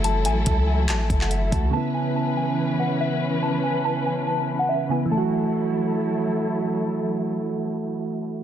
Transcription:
<<
  \new Staff \with { instrumentName = "Synth bell" } { \time 4/4 \key fis \minor \tempo 4 = 142 a''8 gis''8 a''8 gis''8 a''8. fis''16 e''8 a''8 | a''8 gis''8 a''8 gis''8 r8 fis''8 e''8 r8 | a''8 gis''8 a''8 gis''8 a''8. fis''16 e''8 gis''8 | a''2. r4 |
r1 | }
  \new Staff \with { instrumentName = "String section" } { \time 4/4 \key fis \minor <fis e' a'>1 | <e cis' b'>1~ | <e cis' b'>1 | <fis e' a'>1~ |
<fis e' a'>1 | }
  \new Staff \with { instrumentName = "Synth keys" } { \time 4/4 \key fis \minor <e a fis'>2.~ <e a fis'>8 <e a fis'>8 | <cis b e'>1~ | <cis b e'>2.~ <cis b e'>8 <cis b e'>8 | <e a fis'>1~ |
<e a fis'>1 | }
  \new Staff \with { instrumentName = "808-style bass" } { \clef bass \time 4/4 \key fis \minor fis,,8 a,,8 cis,4 a,,8 fis,,4 cis,8 | r1 | r1 | r1 |
r1 | }
  \new DrumStaff \with { instrumentName = "Drums" } \drummode { \time 4/4 hh8 hh8 <hh bd>4 <hc hh>8 <hh bd>16 hc16 hh8 <hh bd>8 | r4 r4 r4 r4 | r4 r4 r4 r4 | r4 r4 r4 r4 |
r4 r4 r4 r4 | }
>>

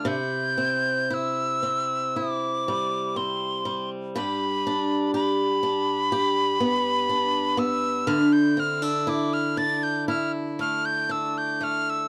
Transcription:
<<
  \new Staff \with { instrumentName = "Tin whistle" } { \time 4/4 \key c \major \tempo 4 = 60 g'''4 e'''4 d'''4 c'''8. r16 | b''4 b''2~ b''8 e'''8 | f'''16 g'''16 f'''16 e'''16 d'''16 f'''16 a'''16 g'''16 f'''16 r16 f'''16 g'''16 e'''16 g'''16 f'''16 e'''16 | }
  \new Staff \with { instrumentName = "Steel-string acoustic guitar" } { \time 4/4 \key c \major <c e'>8 c'8 e'8 c'8 e'8 g8 c'8 g8 | <g, g'>8 d'8 g'8 d'8 g'8 b8 d'8 b8 | <d e'>8 c'16 d'16 e'8 d'8 e'8 a8 d'8 a8 | }
>>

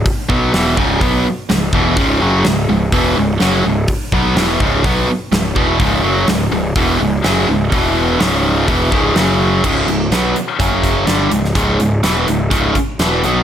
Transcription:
<<
  \new Staff \with { instrumentName = "Distorted electric guitar" } { \clef bass \time 4/4 \key cis \minor \tempo 4 = 125 r8 <b, fis b>8 <e, b, e>8 <cis, gis, cis>8 <b, fis b>8 r8 <cis, gis,>8 <e, b, e>8 | <cis, gis, cis>8 <fis, cis fis>8 <cis, gis,>8 <cis, gis,>8 <e, b, e>8 <cis, gis,>8 <fis, cis fis>8 <cis, gis,>8 | r8 <b, fis b>8 <e, b, e>8 <cis, gis, cis>8 <b, fis b>8 r8 <cis, gis,>8 <e, b, e>8 | <cis, gis, cis>8 <fis, cis fis>8 <cis, gis,>8 <cis, gis,>8 <e, b, e>8 <cis, gis,>8 <fis, cis fis>8 <cis, gis,>8 |
<e, b, e>4 <cis, gis, cis>4 <e, b, e>8 <cis, gis, cis>8 <fis, cis fis>4 | <cis, gis, cis>8 <cis, gis,>8 <b, fis b>8 r8 <fis, cis fis>4 <g, d g>8 <cis, gis,>8 | <cis, gis, cis>8 <cis, gis,>8 <e, b, e>8 <cis, gis,>8 <cis, gis, cis>8 r8 <e, b, e>8 <b, fis b>8 | }
  \new Staff \with { instrumentName = "Picked electric bass" } { \clef bass \time 4/4 \key cis \minor r8 b,,8 e,,8 cis,,8 b,,8 r8 cis,,8 e,,8 | cis,,8 fis,,8 cis,,8 cis,,8 e,,8 cis,,8 fis,,8 cis,,8 | r8 b,,8 e,,8 cis,,8 b,,8 r8 cis,,8 e,,8 | cis,,8 fis,,8 cis,,8 cis,,8 e,,8 cis,,8 fis,,8 cis,,8 |
e,,4 cis,,4 e,,8 cis,,8 fis,,4 | cis,,8 cis,,8 b,,8 r8 fis,,4 g,,8 cis,,8 | cis,,8 cis,,8 e,,8 cis,,8 cis,,8 r8 e,,8 b,,8 | }
  \new DrumStaff \with { instrumentName = "Drums" } \drummode { \time 4/4 <hho bd>8 bd8 <hho sn>8 bd8 <hho bd>4 <hho sn>8 bd8 | <hho bd>4 <hho sn>4 <hho bd>4 <hho sn>4 | <hho bd>8 bd8 <hho sn>8 bd8 <hho bd>4 <hho sn>8 bd8 | <hho bd>4 <hho sn>4 <hho bd>4 <hho sn>4 |
<hho bd>4 <hho sn>4 <hho bd>8 bd8 <hho sn>4 | <cymc bd>8 hh8 <hh sn>8 hh8 <hh bd>8 <hh bd>8 <hh sn>8 hh16 sn16 | <hh bd>8 hh8 <hh sn>8 hh8 <hh bd>8 <hh bd>8 <hh sn>8 hh8 | }
>>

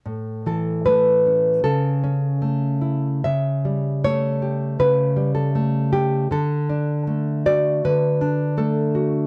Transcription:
\new Staff \with { instrumentName = "Nylon-string guitar" } { \time 4/4 \key a \major \tempo 4 = 78 << { r8 a'8 b'4 a'2 | e''4 cis''4 b'8. a'8. g'8 | a'4. d''8 b'4 a'4 | } \\ { a,8 e8 a8 cis'8 cis8 cis'8 a8 e'8 | cis8 g8 a8 g'8 cis8 g8 a4 | d8 d'8 a8 fis'8 d8 d'8 a8 fis'8 | } >> }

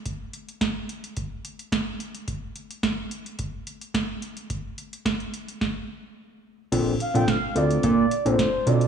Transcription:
<<
  \new Staff \with { instrumentName = "Soft synth lead" } { \time 4/4 \key bes \major \tempo 4 = 108 r1 | r1 | r1 | r8 f''16 g''16 f''8 d''8 d''8. c''8. d''8 | }
  \new Staff \with { instrumentName = "Tine electric piano" } { \time 4/4 \key bes \major r1 | r1 | r1 | <c' d' f' a'>8 r16 <c' d' f' a'>8 r16 <c' d' f' a'>8. r8 <c' d' f' a'>8 r16 <c' d' f' a'>16 r16 | }
  \new Staff \with { instrumentName = "Analog synth bass" } { \clef bass \time 4/4 \key bes \major r1 | r1 | r1 | bes,,8 r16 bes,,16 r8 d,8 bes,8 r16 bes,,16 r8 b,,8 | }
  \new DrumStaff \with { instrumentName = "Drums" } \drummode { \time 4/4 <hh bd>8 hh16 hh16 <hh bd sn>8 hh16 hh16 <hh bd>8 hh16 hh16 <hh bd sn>8 hh16 hh16 | <hh bd>8 hh16 hh16 <hh bd sn>8 hh16 hh16 <hh bd>8 hh16 hh16 <hh bd sn>8 hh16 hh16 | <hh bd>8 hh16 hh16 <hh bd sn>16 hh16 hh16 hh16 <bd sn>4 r4 | <cymc hh bd>8 hh16 hh16 <hh bd sn>8 hh16 hh16 <hh bd>8 hh16 hh16 <hh bd sn>8 hh16 hh16 | }
>>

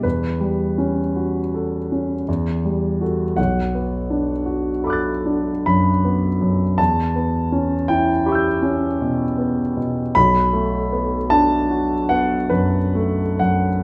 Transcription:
<<
  \new Staff \with { instrumentName = "Grand piano" } { \time 9/8 \key e \minor \tempo 4. = 54 << { r1 r8 | r2 <b'' d''' fis''' a'''>2~ <b'' d''' fis''' a'''>8 | r2 <b'' cis''' e''' g'''>2~ <b'' cis''' e''' g'''>8 | r1 r8 | } \\ { b'1 r8 | fis''2. b''4. | a''4. g''2~ g''8 r8 | b''4. a''4 fis''8 b'4 fis''8 | } >> }
  \new Staff \with { instrumentName = "Grand piano" } { \time 9/8 \key e \minor e,8 g8 cis'8 fis'8 a'8 cis'8 e,8 g8 <fis' a'>8 | b,,8 b8 d'8 fis'8 a'8 d'8 fis,8 b8 fis,8 | e,8 b8 cis'8 e'8 g'8 cis'8 b,8 b8 b,8 | b,,8 a8 b8 d'8 fis'8 b8 fis,8 a8 fis,8 | }
>>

